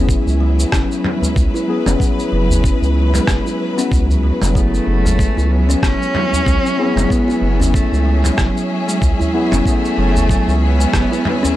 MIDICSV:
0, 0, Header, 1, 9, 480
1, 0, Start_track
1, 0, Tempo, 638298
1, 1502, Time_signature, 4, 2, 24, 8
1, 8696, End_track
2, 0, Start_track
2, 0, Title_t, "Singing bowl"
2, 0, Program_c, 0, 14
2, 0, Note_on_c, 0, 76, 67
2, 8696, Note_off_c, 0, 76, 0
2, 8696, End_track
3, 0, Start_track
3, 0, Title_t, "String section"
3, 0, Program_c, 1, 48
3, 0, Note_on_c, 1, 54, 86
3, 0, Note_on_c, 1, 61, 60
3, 0, Note_on_c, 1, 68, 64
3, 0, Note_on_c, 1, 71, 90
3, 0, Note_on_c, 1, 76, 75
3, 3422, Note_off_c, 1, 61, 0
3, 3422, Note_off_c, 1, 68, 0
3, 3424, Note_off_c, 1, 76, 0
3, 3583, Note_on_c, 1, 61, 87
3, 3952, Note_on_c, 1, 68, 89
3, 4104, Note_on_c, 1, 76, 84
3, 4824, Note_off_c, 1, 71, 0
3, 7924, Note_on_c, 1, 71, 96
3, 8696, Note_off_c, 1, 54, 0
3, 8696, Note_off_c, 1, 61, 0
3, 8696, Note_off_c, 1, 68, 0
3, 8696, Note_off_c, 1, 71, 0
3, 8696, Note_off_c, 1, 76, 0
3, 8696, End_track
4, 0, Start_track
4, 0, Title_t, "Synth keys"
4, 0, Program_c, 2, 88
4, 0, Control_c, 2, 64, 127
4, 0, Note_on_c, 2, 54, 86
4, 0, Note_on_c, 2, 59, 83
4, 0, Note_on_c, 2, 64, 82
4, 0, Note_on_c, 2, 68, 99
4, 1229, Note_off_c, 2, 54, 0
4, 1235, Note_off_c, 2, 59, 0
4, 1239, Note_off_c, 2, 64, 0
4, 1244, Note_off_c, 2, 68, 0
4, 1257, Note_on_c, 2, 54, 81
4, 1262, Note_on_c, 2, 59, 76
4, 1266, Note_on_c, 2, 64, 72
4, 1273, Note_on_c, 2, 68, 95
4, 1474, Note_off_c, 2, 54, 0
4, 1477, Note_off_c, 2, 59, 0
4, 1479, Note_off_c, 2, 64, 0
4, 1483, Note_off_c, 2, 68, 0
4, 1488, Note_on_c, 2, 54, 88
4, 1497, Note_on_c, 2, 59, 77
4, 1509, Note_on_c, 2, 64, 82
4, 1519, Note_on_c, 2, 68, 97
4, 2804, Note_off_c, 2, 54, 0
4, 2809, Note_off_c, 2, 59, 0
4, 2815, Note_off_c, 2, 64, 0
4, 2819, Note_off_c, 2, 68, 0
4, 2822, Note_on_c, 2, 54, 65
4, 2833, Note_on_c, 2, 59, 65
4, 2844, Note_on_c, 2, 64, 64
4, 2853, Note_on_c, 2, 66, 72
4, 3389, Note_off_c, 2, 54, 0
4, 3395, Note_off_c, 2, 59, 0
4, 3400, Note_off_c, 2, 64, 0
4, 3404, Note_off_c, 2, 66, 0
4, 3407, Note_on_c, 2, 54, 92
4, 3417, Note_on_c, 2, 59, 78
4, 3427, Note_on_c, 2, 64, 81
4, 3431, Control_c, 2, 64, 0
4, 3436, Note_on_c, 2, 68, 93
4, 3557, Control_c, 2, 64, 127
4, 5070, Note_off_c, 2, 54, 0
4, 5075, Note_off_c, 2, 59, 0
4, 5079, Note_off_c, 2, 64, 0
4, 5084, Note_off_c, 2, 68, 0
4, 5092, Note_on_c, 2, 54, 84
4, 5097, Note_on_c, 2, 59, 77
4, 5103, Note_on_c, 2, 64, 78
4, 5107, Note_on_c, 2, 68, 93
4, 5312, Note_off_c, 2, 54, 0
4, 5314, Note_off_c, 2, 59, 0
4, 5317, Note_off_c, 2, 64, 0
4, 5320, Note_off_c, 2, 68, 0
4, 5324, Note_on_c, 2, 54, 84
4, 5333, Note_on_c, 2, 59, 76
4, 5343, Note_on_c, 2, 64, 81
4, 5352, Note_on_c, 2, 68, 99
4, 6988, Note_off_c, 2, 54, 0
4, 6992, Note_off_c, 2, 59, 0
4, 6998, Note_off_c, 2, 64, 0
4, 7002, Note_off_c, 2, 68, 0
4, 7014, Note_on_c, 2, 54, 87
4, 7019, Note_on_c, 2, 59, 84
4, 7024, Note_on_c, 2, 64, 76
4, 7028, Note_on_c, 2, 68, 92
4, 7233, Note_off_c, 2, 54, 0
4, 7236, Note_off_c, 2, 59, 0
4, 7238, Note_off_c, 2, 64, 0
4, 7240, Note_off_c, 2, 68, 0
4, 7250, Note_on_c, 2, 54, 93
4, 7259, Note_on_c, 2, 59, 81
4, 7270, Note_on_c, 2, 64, 81
4, 7271, Control_c, 2, 64, 0
4, 7279, Note_on_c, 2, 68, 95
4, 7393, Control_c, 2, 64, 127
4, 8696, Note_off_c, 2, 54, 0
4, 8696, Note_off_c, 2, 59, 0
4, 8696, Note_off_c, 2, 64, 0
4, 8696, Note_off_c, 2, 68, 0
4, 8696, End_track
5, 0, Start_track
5, 0, Title_t, "Cello"
5, 0, Program_c, 3, 42
5, 3426, Note_on_c, 3, 57, 105
5, 4146, Note_on_c, 3, 59, 102
5, 4158, Note_off_c, 3, 57, 0
5, 4385, Note_on_c, 3, 61, 125
5, 4396, Note_off_c, 3, 59, 0
5, 5346, Note_on_c, 3, 59, 110
5, 5357, Note_off_c, 3, 61, 0
5, 5824, Note_on_c, 3, 57, 97
5, 5835, Note_off_c, 3, 59, 0
5, 6252, Note_on_c, 3, 56, 58
5, 6263, Note_off_c, 3, 57, 0
5, 6311, Note_on_c, 3, 54, 88
5, 6322, Note_off_c, 3, 56, 0
5, 7026, Note_off_c, 3, 54, 0
5, 7266, Note_on_c, 3, 57, 114
5, 7954, Note_off_c, 3, 57, 0
5, 7985, Note_on_c, 3, 59, 121
5, 8696, Note_off_c, 3, 59, 0
5, 8696, End_track
6, 0, Start_track
6, 0, Title_t, "Kalimba"
6, 0, Program_c, 4, 108
6, 304, Note_on_c, 4, 54, 78
6, 433, Note_off_c, 4, 54, 0
6, 544, Note_on_c, 4, 61, 89
6, 672, Note_off_c, 4, 61, 0
6, 922, Note_on_c, 4, 56, 77
6, 979, Note_off_c, 4, 56, 0
6, 1160, Note_on_c, 4, 64, 83
6, 1385, Note_off_c, 4, 64, 0
6, 1401, Note_on_c, 4, 61, 103
6, 1498, Note_off_c, 4, 61, 0
6, 1743, Note_on_c, 4, 54, 72
6, 1872, Note_off_c, 4, 54, 0
6, 1983, Note_on_c, 4, 61, 86
6, 2112, Note_off_c, 4, 61, 0
6, 2361, Note_on_c, 4, 56, 79
6, 2419, Note_off_c, 4, 56, 0
6, 2602, Note_on_c, 4, 64, 75
6, 2826, Note_off_c, 4, 64, 0
6, 2842, Note_on_c, 4, 61, 97
6, 2939, Note_off_c, 4, 61, 0
6, 3183, Note_on_c, 4, 54, 73
6, 3312, Note_off_c, 4, 54, 0
6, 3423, Note_on_c, 4, 54, 97
6, 3552, Note_off_c, 4, 54, 0
6, 3800, Note_on_c, 4, 56, 74
6, 3858, Note_off_c, 4, 56, 0
6, 4039, Note_on_c, 4, 64, 70
6, 4265, Note_off_c, 4, 64, 0
6, 4278, Note_on_c, 4, 61, 97
6, 4377, Note_off_c, 4, 61, 0
6, 4619, Note_on_c, 4, 54, 78
6, 4750, Note_off_c, 4, 54, 0
6, 4859, Note_on_c, 4, 54, 101
6, 4990, Note_off_c, 4, 54, 0
6, 5237, Note_on_c, 4, 56, 76
6, 5297, Note_off_c, 4, 56, 0
6, 5475, Note_on_c, 4, 64, 82
6, 5703, Note_off_c, 4, 64, 0
6, 5715, Note_on_c, 4, 61, 97
6, 5815, Note_off_c, 4, 61, 0
6, 6056, Note_on_c, 4, 54, 74
6, 6189, Note_off_c, 4, 54, 0
6, 6296, Note_on_c, 4, 54, 106
6, 6429, Note_off_c, 4, 54, 0
6, 6677, Note_on_c, 4, 56, 79
6, 6737, Note_off_c, 4, 56, 0
6, 6914, Note_on_c, 4, 64, 81
6, 7143, Note_off_c, 4, 64, 0
6, 7155, Note_on_c, 4, 61, 97
6, 7255, Note_off_c, 4, 61, 0
6, 7501, Note_on_c, 4, 54, 78
6, 7631, Note_off_c, 4, 54, 0
6, 7739, Note_on_c, 4, 54, 103
6, 7870, Note_off_c, 4, 54, 0
6, 8117, Note_on_c, 4, 56, 78
6, 8177, Note_off_c, 4, 56, 0
6, 8357, Note_on_c, 4, 64, 77
6, 8584, Note_off_c, 4, 64, 0
6, 8596, Note_on_c, 4, 61, 108
6, 8695, Note_off_c, 4, 61, 0
6, 8696, End_track
7, 0, Start_track
7, 0, Title_t, "Analog synth bass"
7, 0, Program_c, 5, 38
7, 0, Note_on_c, 5, 30, 91
7, 128, Note_off_c, 5, 30, 0
7, 201, Note_on_c, 5, 37, 93
7, 489, Note_off_c, 5, 37, 0
7, 543, Note_on_c, 5, 30, 75
7, 634, Note_off_c, 5, 30, 0
7, 1023, Note_on_c, 5, 37, 85
7, 1114, Note_off_c, 5, 37, 0
7, 1401, Note_on_c, 5, 30, 99
7, 1469, Note_off_c, 5, 30, 0
7, 1746, Note_on_c, 5, 30, 89
7, 2049, Note_off_c, 5, 30, 0
7, 2119, Note_on_c, 5, 37, 88
7, 2408, Note_off_c, 5, 37, 0
7, 2464, Note_on_c, 5, 30, 74
7, 2555, Note_off_c, 5, 30, 0
7, 2945, Note_on_c, 5, 37, 88
7, 3248, Note_off_c, 5, 37, 0
7, 3320, Note_on_c, 5, 30, 82
7, 3608, Note_off_c, 5, 30, 0
7, 3662, Note_on_c, 5, 30, 92
7, 3967, Note_off_c, 5, 30, 0
7, 4040, Note_on_c, 5, 37, 93
7, 4328, Note_off_c, 5, 37, 0
7, 4381, Note_on_c, 5, 30, 77
7, 4473, Note_off_c, 5, 30, 0
7, 4861, Note_on_c, 5, 37, 84
7, 4953, Note_off_c, 5, 37, 0
7, 5234, Note_on_c, 5, 30, 90
7, 5306, Note_off_c, 5, 30, 0
7, 5576, Note_on_c, 5, 30, 94
7, 5884, Note_off_c, 5, 30, 0
7, 5958, Note_on_c, 5, 37, 95
7, 6247, Note_off_c, 5, 37, 0
7, 6301, Note_on_c, 5, 30, 78
7, 6393, Note_off_c, 5, 30, 0
7, 6781, Note_on_c, 5, 37, 80
7, 6873, Note_off_c, 5, 37, 0
7, 7159, Note_on_c, 5, 30, 95
7, 7228, Note_off_c, 5, 30, 0
7, 7503, Note_on_c, 5, 30, 101
7, 7807, Note_off_c, 5, 30, 0
7, 7878, Note_on_c, 5, 37, 98
7, 8167, Note_off_c, 5, 37, 0
7, 8224, Note_on_c, 5, 30, 85
7, 8314, Note_off_c, 5, 30, 0
7, 8696, End_track
8, 0, Start_track
8, 0, Title_t, "Udu"
8, 914, Note_on_c, 9, 64, 75
8, 989, Note_off_c, 9, 64, 0
8, 1881, Note_on_c, 9, 64, 99
8, 1956, Note_off_c, 9, 64, 0
8, 3087, Note_on_c, 9, 64, 84
8, 3162, Note_off_c, 9, 64, 0
8, 3800, Note_on_c, 9, 64, 91
8, 3875, Note_off_c, 9, 64, 0
8, 4757, Note_on_c, 9, 64, 76
8, 4833, Note_off_c, 9, 64, 0
8, 5713, Note_on_c, 9, 64, 89
8, 5789, Note_off_c, 9, 64, 0
8, 6919, Note_on_c, 9, 64, 80
8, 6994, Note_off_c, 9, 64, 0
8, 7639, Note_on_c, 9, 64, 75
8, 7714, Note_off_c, 9, 64, 0
8, 8604, Note_on_c, 9, 64, 70
8, 8679, Note_off_c, 9, 64, 0
8, 8696, End_track
9, 0, Start_track
9, 0, Title_t, "Drums"
9, 65, Note_on_c, 9, 36, 106
9, 72, Note_on_c, 9, 69, 59
9, 140, Note_off_c, 9, 36, 0
9, 147, Note_off_c, 9, 69, 0
9, 207, Note_on_c, 9, 69, 34
9, 282, Note_off_c, 9, 69, 0
9, 448, Note_on_c, 9, 69, 71
9, 523, Note_off_c, 9, 69, 0
9, 544, Note_on_c, 9, 36, 110
9, 544, Note_on_c, 9, 37, 81
9, 551, Note_on_c, 9, 69, 56
9, 619, Note_off_c, 9, 36, 0
9, 619, Note_off_c, 9, 37, 0
9, 626, Note_off_c, 9, 69, 0
9, 689, Note_on_c, 9, 69, 34
9, 764, Note_off_c, 9, 69, 0
9, 785, Note_on_c, 9, 45, 73
9, 861, Note_off_c, 9, 45, 0
9, 930, Note_on_c, 9, 69, 69
9, 1005, Note_off_c, 9, 69, 0
9, 1024, Note_on_c, 9, 36, 111
9, 1031, Note_on_c, 9, 69, 56
9, 1099, Note_off_c, 9, 36, 0
9, 1107, Note_off_c, 9, 69, 0
9, 1169, Note_on_c, 9, 69, 37
9, 1244, Note_off_c, 9, 69, 0
9, 1401, Note_on_c, 9, 45, 77
9, 1408, Note_on_c, 9, 69, 72
9, 1476, Note_off_c, 9, 45, 0
9, 1484, Note_off_c, 9, 69, 0
9, 1504, Note_on_c, 9, 36, 108
9, 1513, Note_on_c, 9, 69, 61
9, 1579, Note_off_c, 9, 36, 0
9, 1588, Note_off_c, 9, 69, 0
9, 1650, Note_on_c, 9, 69, 36
9, 1725, Note_off_c, 9, 69, 0
9, 1889, Note_on_c, 9, 69, 66
9, 1964, Note_off_c, 9, 69, 0
9, 1984, Note_on_c, 9, 36, 113
9, 1994, Note_on_c, 9, 69, 59
9, 2060, Note_off_c, 9, 36, 0
9, 2069, Note_off_c, 9, 69, 0
9, 2128, Note_on_c, 9, 69, 31
9, 2203, Note_off_c, 9, 69, 0
9, 2359, Note_on_c, 9, 45, 57
9, 2366, Note_on_c, 9, 69, 69
9, 2434, Note_off_c, 9, 45, 0
9, 2442, Note_off_c, 9, 69, 0
9, 2462, Note_on_c, 9, 37, 77
9, 2464, Note_on_c, 9, 36, 104
9, 2469, Note_on_c, 9, 69, 56
9, 2538, Note_off_c, 9, 37, 0
9, 2540, Note_off_c, 9, 36, 0
9, 2545, Note_off_c, 9, 69, 0
9, 2608, Note_on_c, 9, 69, 35
9, 2683, Note_off_c, 9, 69, 0
9, 2845, Note_on_c, 9, 69, 68
9, 2920, Note_off_c, 9, 69, 0
9, 2945, Note_on_c, 9, 36, 103
9, 2953, Note_on_c, 9, 69, 56
9, 3020, Note_off_c, 9, 36, 0
9, 3028, Note_off_c, 9, 69, 0
9, 3087, Note_on_c, 9, 69, 37
9, 3163, Note_off_c, 9, 69, 0
9, 3320, Note_on_c, 9, 45, 77
9, 3328, Note_on_c, 9, 69, 71
9, 3396, Note_off_c, 9, 45, 0
9, 3403, Note_off_c, 9, 69, 0
9, 3424, Note_on_c, 9, 36, 103
9, 3432, Note_on_c, 9, 69, 53
9, 3499, Note_off_c, 9, 36, 0
9, 3507, Note_off_c, 9, 69, 0
9, 3567, Note_on_c, 9, 69, 34
9, 3642, Note_off_c, 9, 69, 0
9, 3807, Note_on_c, 9, 69, 69
9, 3882, Note_off_c, 9, 69, 0
9, 3903, Note_on_c, 9, 36, 100
9, 3910, Note_on_c, 9, 69, 55
9, 3978, Note_off_c, 9, 36, 0
9, 3985, Note_off_c, 9, 69, 0
9, 4050, Note_on_c, 9, 69, 34
9, 4125, Note_off_c, 9, 69, 0
9, 4286, Note_on_c, 9, 69, 70
9, 4361, Note_off_c, 9, 69, 0
9, 4382, Note_on_c, 9, 36, 107
9, 4384, Note_on_c, 9, 37, 72
9, 4391, Note_on_c, 9, 69, 54
9, 4457, Note_off_c, 9, 36, 0
9, 4459, Note_off_c, 9, 37, 0
9, 4466, Note_off_c, 9, 69, 0
9, 4529, Note_on_c, 9, 69, 36
9, 4604, Note_off_c, 9, 69, 0
9, 4623, Note_on_c, 9, 45, 73
9, 4698, Note_off_c, 9, 45, 0
9, 4767, Note_on_c, 9, 69, 65
9, 4842, Note_off_c, 9, 69, 0
9, 4861, Note_on_c, 9, 36, 96
9, 4869, Note_on_c, 9, 69, 53
9, 4937, Note_off_c, 9, 36, 0
9, 4945, Note_off_c, 9, 69, 0
9, 5007, Note_on_c, 9, 69, 34
9, 5082, Note_off_c, 9, 69, 0
9, 5243, Note_on_c, 9, 45, 82
9, 5250, Note_on_c, 9, 69, 69
9, 5318, Note_off_c, 9, 45, 0
9, 5325, Note_off_c, 9, 69, 0
9, 5341, Note_on_c, 9, 36, 93
9, 5352, Note_on_c, 9, 69, 56
9, 5416, Note_off_c, 9, 36, 0
9, 5427, Note_off_c, 9, 69, 0
9, 5488, Note_on_c, 9, 69, 34
9, 5563, Note_off_c, 9, 69, 0
9, 5728, Note_on_c, 9, 69, 64
9, 5803, Note_off_c, 9, 69, 0
9, 5821, Note_on_c, 9, 36, 102
9, 5832, Note_on_c, 9, 69, 56
9, 5896, Note_off_c, 9, 36, 0
9, 5907, Note_off_c, 9, 69, 0
9, 5969, Note_on_c, 9, 69, 29
9, 6044, Note_off_c, 9, 69, 0
9, 6197, Note_on_c, 9, 45, 62
9, 6204, Note_on_c, 9, 69, 66
9, 6272, Note_off_c, 9, 45, 0
9, 6279, Note_off_c, 9, 69, 0
9, 6300, Note_on_c, 9, 36, 102
9, 6300, Note_on_c, 9, 37, 72
9, 6307, Note_on_c, 9, 69, 52
9, 6376, Note_off_c, 9, 36, 0
9, 6376, Note_off_c, 9, 37, 0
9, 6383, Note_off_c, 9, 69, 0
9, 6446, Note_on_c, 9, 69, 33
9, 6521, Note_off_c, 9, 69, 0
9, 6683, Note_on_c, 9, 69, 63
9, 6758, Note_off_c, 9, 69, 0
9, 6781, Note_on_c, 9, 36, 98
9, 6787, Note_on_c, 9, 69, 55
9, 6856, Note_off_c, 9, 36, 0
9, 6862, Note_off_c, 9, 69, 0
9, 6926, Note_on_c, 9, 69, 32
9, 7001, Note_off_c, 9, 69, 0
9, 7160, Note_on_c, 9, 45, 85
9, 7167, Note_on_c, 9, 69, 69
9, 7235, Note_off_c, 9, 45, 0
9, 7242, Note_off_c, 9, 69, 0
9, 7261, Note_on_c, 9, 36, 94
9, 7269, Note_on_c, 9, 69, 54
9, 7336, Note_off_c, 9, 36, 0
9, 7344, Note_off_c, 9, 69, 0
9, 7406, Note_on_c, 9, 69, 33
9, 7481, Note_off_c, 9, 69, 0
9, 7644, Note_on_c, 9, 69, 64
9, 7719, Note_off_c, 9, 69, 0
9, 7741, Note_on_c, 9, 36, 100
9, 7749, Note_on_c, 9, 69, 54
9, 7817, Note_off_c, 9, 36, 0
9, 7825, Note_off_c, 9, 69, 0
9, 7887, Note_on_c, 9, 69, 31
9, 7962, Note_off_c, 9, 69, 0
9, 8125, Note_on_c, 9, 69, 64
9, 8200, Note_off_c, 9, 69, 0
9, 8222, Note_on_c, 9, 36, 98
9, 8223, Note_on_c, 9, 37, 78
9, 8230, Note_on_c, 9, 69, 55
9, 8297, Note_off_c, 9, 36, 0
9, 8298, Note_off_c, 9, 37, 0
9, 8305, Note_off_c, 9, 69, 0
9, 8369, Note_on_c, 9, 69, 34
9, 8444, Note_off_c, 9, 69, 0
9, 8462, Note_on_c, 9, 45, 77
9, 8537, Note_off_c, 9, 45, 0
9, 8608, Note_on_c, 9, 69, 66
9, 8683, Note_off_c, 9, 69, 0
9, 8696, End_track
0, 0, End_of_file